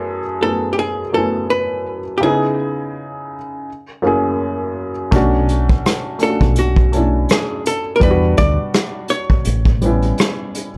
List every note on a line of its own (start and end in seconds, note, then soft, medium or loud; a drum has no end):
0.00 0.19 F#2 loud
0.00 0.19 A3 medium
0.00 0.20 B3 medium
0.00 0.20 E4 medium
0.00 0.24 G#4 loud
0.41 1.00 F#2 medium
0.41 1.00 A3 medium
0.41 1.01 B3 medium
0.41 1.02 E4 medium
0.41 0.70 A4 medium
0.45 1.02 G#4 medium
0.73 0.78 G4 medium
0.79 1.12 G#4 medium
1.13 2.00 F#2 medium
1.13 2.00 A3 medium
1.13 2.01 B3 medium
1.13 2.02 E4 medium
1.13 1.50 A4 medium
1.17 2.02 G#5 medium
1.50 2.17 B4 medium
2.18 3.36 C#3 medium
2.18 2.22 G4 medium
2.22 3.36 B3 medium
2.22 3.37 D#4 medium
2.22 3.37 E4 medium
2.22 4.72 G#4 medium
2.22 3.38 G#4 loud
4.02 4.89 F#2 medium
4.02 4.90 A#3 medium
4.02 4.90 C#4 medium
4.02 4.91 E4 medium
4.07 4.92 G#4 medium
5.11 5.77 B1 loud
5.11 5.98 A3 loud
5.11 5.99 C#4 loud
5.11 6.00 D4 medium
5.11 kick loud
5.11 closed hi-hat medium
5.16 6.00 F#4 loud
5.49 closed hi-hat medium
5.69 kick loud
5.86 cross-stick loud
5.86 closed hi-hat medium
6.19 6.78 A3 medium
6.19 6.79 C#4 medium
6.19 6.79 D4 medium
6.19 closed hi-hat medium
6.23 6.29 F4 medium
6.23 6.59 A4 medium
6.30 6.83 F#4 medium
6.41 7.25 B1 medium
6.41 kick medium
6.56 7.32 F#4 medium
6.56 closed hi-hat medium
6.76 kick medium
6.92 7.79 A3 medium
6.92 7.80 C#4 medium
6.92 7.81 D4 medium
6.92 closed hi-hat medium
6.97 7.81 E4 medium
7.29 7.67 G#4 medium
7.29 cross-stick loud
7.29 closed hi-hat medium
7.66 7.95 A4 medium
7.66 closed hi-hat medium
7.96 8.02 A#4 medium
8.00 8.34 E2 loud
8.00 9.14 G3 medium
8.00 9.15 B3 medium
8.00 9.16 D4 medium
8.00 8.36 B4 loud
8.00 kick loud
8.00 closed hi-hat medium
8.05 8.10 E4 medium
8.11 9.20 F#4 loud
8.37 8.56 D2 medium
8.37 9.06 D5 loud
8.37 kick medium
8.37 closed hi-hat medium
8.74 cross-stick loud
8.74 closed hi-hat medium
9.08 10.51 C#5 medium
9.08 closed hi-hat medium
9.30 kick medium
9.45 10.11 A1 medium
9.45 closed hi-hat medium
9.65 kick medium
9.82 10.68 G3 medium
9.82 10.69 B3 medium
9.82 10.70 C#4 medium
9.82 closed hi-hat medium
9.86 10.70 E4 medium
10.02 closed hi-hat soft
10.18 cross-stick loud
10.18 closed hi-hat medium
10.55 closed hi-hat medium